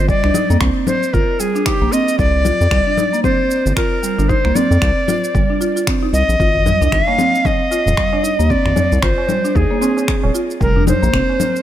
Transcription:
Already playing: analog synth bass G1
0.08 marimba G3, native american-style wooden flute D5, kick, shaker
0.24 analog synth bass C2, marimba D4, finger snap
0.34 marimba D#4, low conga, shaker
0.50 analog synth bass F2, marimba A#3, shaker
0.61 analog synth bass C2, marimba C4, finger snap, kick, shaker
0.87 native american-style wooden flute C5, low conga, shaker
1.03 shaker
1.08 native american-style wooden flute C5
1.13 analog synth bass G1, marimba F4, native american-style wooden flute A#4, kick, shaker
1.40 marimba G3, native american-style wooden flute G#4, shaker
1.55 marimba D4, shaker
1.66 marimba D#4, native american-style wooden flute G4, finger snap, kick, shaker
1.81 analog synth bass A#1, marimba A#3
1.92 marimba C4, native american-style wooden flute D#5, shaker
2.08 shaker
2.19 analog synth bass C2, native american-style wooden flute D5, kick, shaker
2.45 marimba F4, low conga, shaker
2.61 analog synth bass F2, shaker
2.71 analog synth bass C2, marimba G3, finger snap, kick, shaker
2.87 marimba D4
2.97 marimba D#4, low conga, shaker
3.13 marimba A#3, shaker
3.23 marimba C4, native american-style wooden flute C5, kick, low conga, shaker
3.51 shaker
3.66 analog synth bass G1, shaker
3.76 marimba F4, native american-style wooden flute A#4, finger snap, kick, shaker
4.03 marimba G3, shaker
4.18 analog synth bass G1, marimba D4, shaker
4.29 marimba D#4, native american-style wooden flute C5, kick, shaker
4.45 analog synth bass C2, marimba A#3, finger snap
4.55 marimba C4, native american-style wooden flute D5, low conga, shaker
4.71 analog synth bass F2, shaker
4.82 analog synth bass C2, finger snap, kick, shaker
5.08 marimba F4, low conga, shaker
5.24 shaker
5.35 analog synth bass G1, marimba G3, kick, shaker
5.50 marimba D4
5.61 marimba F4, shaker
5.76 marimba F4, shaker
5.87 marimba C4, finger snap, kick, shaker
6.03 marimba D#4
6.13 analog synth bass C2, native american-style wooden flute D#5, shaker
6.29 analog synth bass A#1, shaker
6.40 analog synth bass G#1, marimba F4, kick, shaker
6.55 tabla ge
6.66 marimba G3, tabla tin, low conga, tabla ge, shaker
6.81 analog synth bass C2, marimba D4, shaker
6.92 analog synth bass G#1, marimba D#4, native american-style wooden flute F5, finger snap, kick, shaker
7.07 marimba A#3, tabla na
7.18 marimba C4, low conga, shaker
7.35 shaker
7.45 native american-style wooden flute D#5, kick, tabla na, low conga, shaker
7.71 marimba F4, tabla na, shaker
7.86 analog synth bass D#1, tabla ge, shaker
7.97 marimba G3, finger snap, kick, shaker
8.13 marimba D4, tabla na
8.23 marimba D#4, tabla tin, shaker
8.39 analog synth bass D#2, marimba A#3, shaker
8.50 marimba C4, native american-style wooden flute D5, kick, shaker
8.65 analog synth bass G#1, finger snap, tabla ge
8.76 tabla tin, low conga, tabla ge, shaker
8.92 analog synth bass C2, shaker
9.03 analog synth bass G#1, marimba F4, native american-style wooden flute C5, finger snap, kick, shaker
9.18 tabla na
9.29 marimba G3, low conga, shaker
9.44 marimba D4, shaker
9.55 analog synth bass D#2, marimba D#4, native american-style wooden flute G#4, kick, shaker
9.71 marimba A#3, tabla na, tabla tin
9.81 marimba C4, tabla na, shaker
9.97 tabla na, tabla tin, shaker
10.08 finger snap, kick, shaker
10.23 analog synth bass D#1, tabla na, tabla tin
10.34 marimba F4, shaker
10.51 shaker
10.61 analog synth bass F1, marimba G3, native american-style wooden flute A#4, kick, shaker
10.76 marimba D4, tabla ge
10.86 marimba D#4, native american-style wooden flute C5, tabla tin, tabla ge, low conga, shaker
11.03 analog synth bass A#1, marimba A#3, shaker
11.13 analog synth bass F1, marimba C4, finger snap, kick, shaker
11.29 tabla na
11.40 low conga, shaker
11.56 shaker

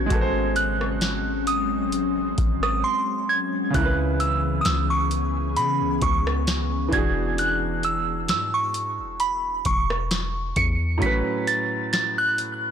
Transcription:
Already playing: grand piano A3 F#4 B4 C#5, ambient pad C#4, synth bell G#6
0.06 grand piano G#3 F#4
0.10 808-style bass G#1, ambient pad F#3 G#3 C4, grand piano A4, kick, closed hi-hat
0.15 grand piano B4
0.21 grand piano C5
0.56 synth bell F#6, closed hi-hat
0.81 cross-stick
1.01 snare, closed hi-hat
1.47 synth bell D#6, closed hi-hat
1.92 closed hi-hat
2.38 808-style bass G#1, kick, closed hi-hat
2.63 synth bell D#6, cross-stick
2.84 synth bell C6
3.29 synth bell G#6
3.70 grand piano C#3 C#4, ambient pad B3, closed hi-hat
3.74 808-style bass C#2, ambient pad E3 C#4 G#4, grand piano E4, synth bell F#6, kick
3.79 grand piano A#4
3.85 grand piano B4
4.20 synth bell E6, closed hi-hat
4.61 synth bell D#6, closed hi-hat
4.66 808-style bass C#2, synth bell E6, snare
4.90 synth bell C#6
5.11 closed hi-hat
5.56 808-style bass C#3, synth bell B5, closed hi-hat
5.81 808-style bass C#2
6.01 808-style bass C#2, synth bell C#6, kick, closed hi-hat
6.27 cross-stick
6.47 snare, closed hi-hat
6.89 grand piano E3 D4
6.93 808-style bass E1, grand piano F#4, synth bell G#6, kick, closed hi-hat
6.97 grand piano G#4
7.38 synth bell F#6, closed hi-hat
7.83 synth bell E6, closed hi-hat
8.28 808-style bass G#2, synth bell E6, snare, closed hi-hat
8.54 synth bell C#6
8.74 closed hi-hat
8.99 808-style bass E1
9.20 synth bell B5, closed hi-hat
9.65 808-style bass E1, synth bell C#6, kick, closed hi-hat
9.90 cross-stick
10.11 snare, closed hi-hat
10.56 808-style bass E2, synth bell C#7, kick, closed hi-hat
10.98 grand piano A2 F#3, kick
11.02 grand piano C#4, synth bell B6, closed hi-hat
11.06 grand piano B4
11.47 synth bell A6, closed hi-hat
11.93 synth bell A6, snare, closed hi-hat
12.18 synth bell F#6
12.38 closed hi-hat

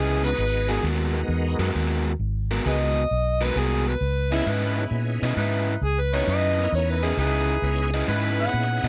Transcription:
Already playing: fingered electric bass C#2, overdriven electric guitar C#4 E4 B4 D#5, harmonica G#4
0.23 tonewheel organ G#3 B3 D#4 F#4 A#5, harmonica B4
0.38 fingered electric bass G#1
0.69 overdriven electric guitar G#3 B3 F#4 A#4, harmonica G#4
0.83 fingered electric bass D#2, overdriven electric guitar G#3 B3 F#4 A#4
1.13 tonewheel organ G#3 B3 D#4 F#4 A#4
1.28 fingered electric bass E2
1.59 fingered electric bass F#2, overdriven electric guitar G#3 B3 F#4 A#4
1.75 fingered electric bass D#2, overdriven electric guitar G#3 B3 F#4 A#4
2.19 fingered electric bass G#1
2.51 overdriven electric guitar G#3 B3 F#4 A#4
2.66 fingered electric bass C#2, overdriven electric guitar G#3 B3 F#4 A#4, harmonica G#4 B4 D#5
3.11 fingered electric bass B1
3.41 tonewheel organ G#3 B3 D#4 F#4 A#4, overdriven electric guitar G#3 B3 F#4 A#4, harmonica B4
3.56 fingered electric bass C2, overdriven electric guitar G#3 B3 F#4 A#4, harmonica G#4
3.88 harmonica B4
4.01 fingered electric bass C#2
4.31 tonewheel organ B3 C#4 D#4 E4 G#4, overdriven electric guitar C#4 E4 B4 D#5, harmonica E4
4.46 fingered electric bass G#2, overdriven electric guitar C#4 E4 B4 D#5, horn section E4 B4
4.77 tonewheel organ B3 C#4 D#4 E4 G#4
4.91 fingered electric bass A#2
5.22 fingered electric bass B2, overdriven electric guitar C#4 E4 B4 D#5
5.36 fingered electric bass G#2, overdriven electric guitar C#4 E4 B4 D#5, horn section D#4 E4 B4
5.81 fingered electric bass C#2, harmonica G#4
6.00 harmonica B4
6.12 tonewheel organ B3 C#4 D#4 E4 G#4, overdriven electric guitar C#4 E4 B4 D#5, horn section D#4 E4 B4, harmonica C#5
6.27 fingered electric bass F#2, overdriven electric guitar C#4 E4 B4 D#5, harmonica D#5
6.58 tonewheel organ B3 C#4 D#4 E4 A#4
6.72 fingered electric bass E2, harmonica C#5
6.89 harmonica B4
7.03 overdriven electric guitar C#4 E4 B4 D#5, harmonica G#4
7.17 fingered electric bass C#2, overdriven electric guitar C#4 E4 B4 D#5, horn section D#4 E4 B4, harmonica G#4
7.62 fingered electric bass C#2, tonewheel organ B3 C#4 D#4 E4 G#4
7.94 overdriven electric guitar C#4 E4 B4 D#5
8.08 fingered electric bass G#2, overdriven electric guitar C#4 E4 B4 D#5, horn section E4 B4
8.39 tonewheel organ B3 C#4 D#4 E4 G#4, harmonica F#5
8.54 fingered electric bass A#2
8.84 fingered electric bass B2, overdriven electric guitar E4 B4 D#5

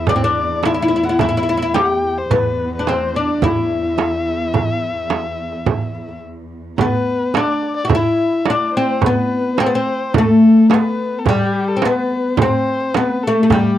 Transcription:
Already playing: cello section E2
0.07 oud D4, kamancheh D5, darbuka dum, frame drum
0.16 oud C4
0.21 oud D4, kamancheh D5
0.63 oud E4, kamancheh E5, darbuka tek, frame drum
0.74 oud E4
0.82 oud E4
0.88 oud E4, darbuka ka
0.96 oud E4
1.03 oud E4, kamancheh F#5
1.09 oud E4
1.19 oud E4, kamancheh E5, darbuka dum, frame drum
1.29 oud E4
1.37 oud E4
1.43 oud E4
1.48 oud E4, darbuka ka
1.57 oud E4
1.62 oud E4, darbuka ka
1.74 oud G4, kamancheh G5, darbuka tek, frame drum
2.05 darbuka ka
2.18 kamancheh C5
2.30 cello section E2, oud B3, kamancheh B4, darbuka dum, frame drum
2.75 oud D4, kamancheh B4
2.87 oud C4, kamancheh C5, darbuka tek, frame drum
3.15 oud D4, kamancheh D5, darbuka ka
3.42 oud E4, kamancheh E5, frame drum, darbuka dum
3.57 darbuka ka
3.71 darbuka ka
3.84 darbuka ka
3.98 darbuka tek, frame drum
4.26 darbuka ka
4.54 darbuka dum, frame drum
5.10 darbuka tek, frame drum
5.38 darbuka ka
5.52 darbuka ka
5.66 frame drum, darbuka dum
5.81 darbuka ka
5.95 darbuka ka
6.09 darbuka ka
6.78 oud B3, kamancheh B4, frame drum, darbuka dum
7.34 oud D4, kamancheh D5, darbuka tek, frame drum
7.62 darbuka ka
7.76 kamancheh D5
7.85 oud F#4
7.89 kamancheh E5, darbuka dum, frame drum
7.95 oud E4
8.04 darbuka ka
8.19 darbuka ka
8.32 darbuka ka
8.45 kamancheh D5, darbuka tek, frame drum
8.50 oud D4
8.74 oud C4, kamancheh C5
9.02 kamancheh B4, darbuka dum, frame drum
9.06 oud B3
9.57 oud C4, kamancheh C5, darbuka tek, frame drum
9.66 oud B3
9.72 oud C4, kamancheh C5
9.86 darbuka ka
10.14 kamancheh A4, frame drum, darbuka dum
10.18 oud A3
10.29 darbuka ka
10.42 darbuka ka
10.57 darbuka ka
10.70 kamancheh B4, darbuka tek, frame drum
10.74 oud B3
11.19 kamancheh A4
11.25 oud G3, kamancheh G4, frame drum, darbuka dum
11.68 kamancheh A4
11.77 oud C4
11.82 oud B3, kamancheh B4, darbuka tek, frame drum
12.10 darbuka ka
12.37 kamancheh C5, frame drum, darbuka dum
12.42 oud C4
12.53 darbuka ka
12.67 darbuka ka
12.80 darbuka ka
12.94 oud B3, kamancheh B4, darbuka tek, frame drum
13.23 oud A3, kamancheh A4
13.43 oud A3
13.50 oud G3, kamancheh G4, frame drum, darbuka dum

